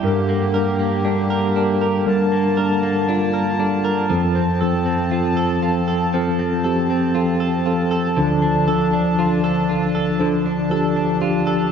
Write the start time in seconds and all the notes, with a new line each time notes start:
Already playing: E3 C4 E4 G4 D5 G5
0.03 G2 D3 G3 A#3 D4 G4 A#4
0.29 A#3
0.54 G3 D4 A#4
0.79 A#3
1.05 G3 D4 A#4
1.30 A#4
1.56 G3 D4 A#4
1.81 A#4
2.06 G2 G3 D4 A#4 A5
2.32 A#3
2.57 G3 D4 A#4
2.83 A#3
3.08 G3 D4 F4
3.34 A#4
3.59 G3 D4 A4
3.85 A#4
4.10 F2 F3 C4 A4
4.35 C4
4.61 F3 C4 A4
4.86 C4
5.11 F3 C4 F4 A4
5.37 A4
5.63 F3 C4 F4 A4
5.88 A4
6.14 F3 C4 A4
6.39 C4
6.64 F3 C4 G4 A4
6.90 C4
7.15 F3 C4 F4 A4
7.40 A4
7.66 F3 C4 F4 A4
7.91 A4
8.17 D2 D3 F3 D4 A4
8.42 D4
8.67 F3 D4 A4
8.93 D4
9.19 F3 D4 F4 A4
9.44 A4
9.69 F3 D4 F4 A4
9.95 A4
10.20 D3 F3 D4 A4
10.46 D4
10.70 F3 D4 G4 A4
10.96 D4
11.21 F3 D4 F4 G4
11.47 A4